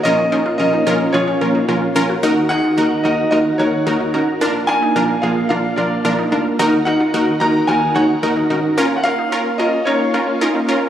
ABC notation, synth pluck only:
X:1
M:4/4
L:1/8
Q:1/4=110
K:Ebm
V:1 name="Synth pluck"
[DFB] [DFB] [DFB] [DFB] [DFA] [DFB] [DFB] [DFB] | [EGB] [EGA] [EGB] [EGB] [EGB] [EGB] [EGB] [EGB] | [=DFB] [DFB] [DFB] [DFA] [DFB] [DFB] [DFB] [DFB] | [EGB] [EGB] [EGB] [EGB] [EGB] [EGd] [EGB] [EGB] |
[DFB] [DFB] [DFB] [DFB] [DFB] [DFB] [DFB] [DFB] |]